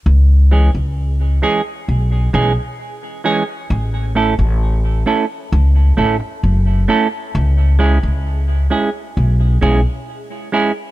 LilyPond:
<<
  \new Staff \with { instrumentName = "Clean electric guitar" } { \time 4/4 \key cis \minor \tempo 4 = 66 r8 <e gis cis' gis'>8 r8 <e gis cis' gis'>8 r8 <e gis cis' gis'>8 r8 <e gis cis' gis'>8 | r8 <a cis' e' a'>8 r8 <a cis' e' a'>8 r8 <a cis' e' a'>8 r8 <a cis' e' a'>8 | r8 <gis cis' e' gis'>8 r8 <gis cis' e' gis'>8 r8 <gis cis' e' gis'>8 r8 <gis cis' e' gis'>8 | }
  \new Staff \with { instrumentName = "Upright bass" } { \clef bass \time 4/4 \key cis \minor cis,8. cis,8. r8 b,,8 b,,16 r4 r16 | a,,8. a,,8. r8 cis,8 a,,16 r16 fis,,8 r8 | cis,8. cis,8. r8 b,,8 b,,16 r4 r16 | }
>>